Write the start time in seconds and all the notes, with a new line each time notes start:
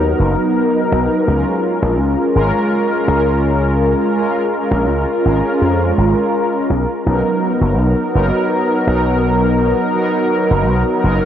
Already playing: D#2 F#3 B3 D#4 A#4
0.19 F#1
0.92 B1
1.26 C#2 G#3 C#4 F4 A#4
1.82 A#1
2.00 C#2
2.35 G#1 G#3 C#4 F4 A#4
3.07 C#2 G#3 C#4 F4 A#4
4.15 G#3 C#4 F4 A#4
4.71 A#1
4.88 C#2
5.24 G#1 G#3 C#4 F4 A#4
5.61 F2
5.98 G#1
6.70 B1
7.04 B1 F#3 B3 D#4 A#4
7.61 F#1
7.78 B1
8.14 F#1 F#3 B3 D#4 A#4
8.85 B1 F#3 B3 D#4 A#4
9.94 F#3 B3 D#4 A#4
10.50 F#1
10.68 B1
11.02 F#1 F#3 B3 D#4 A#4